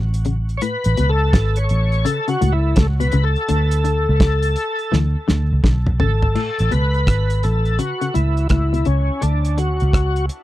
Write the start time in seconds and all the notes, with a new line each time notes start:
Already playing: A1
0.14 closed hi-hat
0.25 C#3, closed hi-hat
0.49 closed hi-hat
0.57 C#5, closed hi-hat
0.62 A2 B4
0.84 A1, closed hi-hat
0.97 C#2 B2, closed hi-hat
1.09 A4
1.33 G#1, kick, snare, closed hi-hat
1.56 C#5, closed hi-hat
1.69 A1, closed hi-hat
1.92 closed hi-hat
2.05 C#3 A4, closed hi-hat
2.28 C#3 F#4, closed hi-hat
2.41 C#2 A2, closed hi-hat
2.53 E4
2.76 C#2 A2 A4, kick, snare, closed hi-hat
3.00 B2 B4, closed hi-hat
3.12 C#2 C#3, closed hi-hat
3.24 A4
3.36 closed hi-hat
3.48 D2 D3, closed hi-hat
3.71 closed hi-hat
3.84 D3, closed hi-hat
4.09 C#2
4.20 kick, snare, closed hi-hat
4.42 closed hi-hat
4.56 closed hi-hat
4.79 closed hi-hat
4.92 D2 E3, snare
5.28 D2 D3, snare
5.53 C#2
5.64 B1 D3, kick, snare
5.87 mid tom
6.00 G#1 C#3 A4, floor tom
6.22 floor tom
6.35 A2, crash
6.59 A1, closed hi-hat
6.71 C#2 B2 B4, closed hi-hat
6.94 closed hi-hat
7.07 G#1, kick, cross-stick, closed hi-hat
7.30 closed hi-hat
7.43 A1 A4, closed hi-hat
7.65 closed hi-hat
7.79 C#3 F#4, closed hi-hat
8.01 C#3, closed hi-hat
8.14 C#2 A2 E4, closed hi-hat
8.37 closed hi-hat
8.49 C#2 A2 E4, kick, cross-stick, closed hi-hat
8.73 B2, closed hi-hat
8.85 C#2 C#3 C#4, closed hi-hat
9.21 D2 D3 D4, closed hi-hat
9.45 closed hi-hat
9.58 D3 F#4, closed hi-hat
9.80 C#2, closed hi-hat
9.93 kick, cross-stick, closed hi-hat
10.16 closed hi-hat
10.29 closed hi-hat